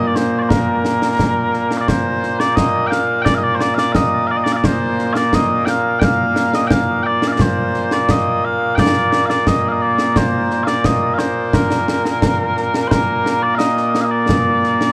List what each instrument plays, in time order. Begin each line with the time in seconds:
Already playing: bagpipes A#2 A#3
0.07 bagpipes D5
0.15 bagpipes C5, snare
0.38 bagpipes C5 D5
0.49 bagpipes A#4, concert bass drum, snare
0.85 snare
1.02 snare
1.19 concert bass drum, snare
1.54 snare
1.71 snare
1.77 bagpipes D5 F5
1.88 bagpipes C5, concert bass drum, snare
2.23 snare
2.39 bagpipes D5, snare
2.56 bagpipes D#5, concert bass drum, snare
2.87 bagpipes F5 G5
2.92 snare
3.22 bagpipes D5 G5
3.26 concert bass drum, snare
3.35 bagpipes D#5 F5
3.44 bagpipes D5
3.54 bagpipes C5
3.60 bagpipes D5, snare
3.75 bagpipes F5, snare
3.79 bagpipes D5
3.93 bagpipes D#5 F5, concert bass drum, snare
4.27 bagpipes D5 F5
4.37 bagpipes D#5
4.44 bagpipes D5, snare
4.53 bagpipes D5 F5
4.64 bagpipes C5, concert bass drum, snare
4.99 snare
5.13 bagpipes D5 F5, snare
5.33 bagpipes D#5, concert bass drum, snare
5.65 bagpipes F5 G5, snare
5.99 bagpipes F5 G5, concert bass drum, snare
6.36 snare
6.54 bagpipes D#5, snare
6.67 bagpipes F5 G5, concert bass drum, snare
7.03 bagpipes D5 G5
7.22 snare
7.28 bagpipes F5
7.32 bagpipes D5
7.39 bagpipes C5, concert bass drum, snare
7.74 snare
7.91 bagpipes D5, snare
8.09 bagpipes D#5, concert bass drum, snare
8.45 bagpipes F5
8.75 bagpipes G5, concert bass drum, snare
8.79 bagpipes D5
9.13 snare
9.26 bagpipes F5
9.30 bagpipes D5, snare
9.47 bagpipes D#5, concert bass drum, snare
9.69 bagpipes D#5 F5
9.82 bagpipes D5
9.98 snare
10.16 bagpipes C5, concert bass drum, snare
10.50 snare
10.63 bagpipes F5, snare
10.68 bagpipes D5
10.84 bagpipes D#5, concert bass drum, snare
11.14 bagpipes F5
11.18 bagpipes C5, snare
11.53 bagpipes A#4, concert bass drum, snare
11.71 snare
11.88 snare
12.05 snare
12.22 concert bass drum, snare
12.57 snare
12.74 snare
12.88 bagpipes A#4 C5, concert bass drum, snare
13.26 snare
13.42 bagpipes D5
13.55 bagpipes D#5 F5
13.60 snare
13.77 snare
13.95 snare
14.01 bagpipes D#5 F5
14.11 bagpipes D5
14.29 concert bass drum, snare
14.64 snare
14.81 snare